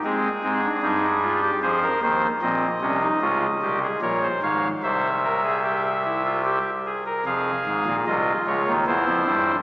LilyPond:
<<
  \new Staff \with { instrumentName = "Pipe organ" } { \time 3/4 \key aes \major \tempo 4 = 75 << { aes'2 c''4 | \key f \minor ees''2 des''8 f''8 | e''2~ e''8 r8 | f''4 ees''8 des''8 c''4 | } \\ { aes8 c'16 d'16 ees'8 f'16 g'16 aes'16 bes'16 c''8 | c'8 des'16 ees'16 f'8 g'16 aes'16 bes'16 c''16 des''8 | c''8 bes'16 aes'16 g'8 e'16 f'16 g'8 aes'16 bes'16 | aes'4 f'4 e'4 | } >> }
  \new Staff \with { instrumentName = "Pipe organ" } { \clef bass \time 3/4 \key aes \major c'8 <aes, aes>8 <g, g>4 <f, f>8 <ees, ees>8 | \key f \minor <bes,, bes,>8 <c, c>8 <des, des>8 <c, c>8 <bes,, bes,>8 <aes,, aes,>8 | <c, c>2~ <c, c>8 r8 | <f,, f,>8 <aes,, aes,>16 <bes,, bes,>16 <c, c>8 <des, des>16 <ees, ees>16 <e, e>16 <f, f>16 <g, g>8 | }
>>